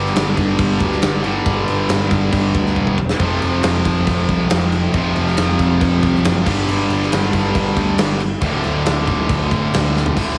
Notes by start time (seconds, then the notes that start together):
Already playing: G1 G2 D3 G3
0.06 snare
0.16 G1, snare, crash
0.37 G1, kick, crash
0.59 G1, kick, crash
0.80 D2, kick, crash
0.92 snare
1.02 G1, snare, crash
1.23 G2 D3 G3, crash
1.46 G1, kick, crash
1.68 G1, crash
1.89 G1, snare, crash
2.11 G1, kick, crash
2.32 G1, kick, crash
2.54 D2, kick, crash
2.66 snare
2.76 E1, kick
2.87 kick
2.98 kick
3.09 snare
3.19 F1 F2 C3 F3, kick, crash
3.42 F1, crash
3.63 F1, snare, crash
3.85 F1, kick, crash
4.07 F1, kick, crash
4.29 C2, kick, crash
4.50 F1, snare, crash
4.72 crash
4.93 F1 F2 C3 F3, kick, crash
5.16 F1, crash
5.28 snare
5.37 F1, snare, crash
5.59 F1, kick, crash
5.81 F1, kick, crash
6.03 C2, kick, crash
6.15 snare
6.24 F#1, snare, crash
6.45 G1 G2 D3 G3, kick, crash
6.68 G1, crash
6.90 G1, crash
7.02 snare
7.12 G1, snare, crash
7.33 G1, kick, crash
7.55 G1, kick, crash
7.76 D2, kick, crash
7.98 G1, snare, crash
8.20 crash
8.41 D1 D2 A2 D3, kick, crash
8.64 D1, crash
8.86 D1, snare, crash
9.07 D1, kick, crash
9.29 D1, kick, crash
9.51 A1, kick, crash
9.73 D1, snare, crash
9.97 snare
10.06 floor tom
10.16 D1 D2 A2 D3, kick, crash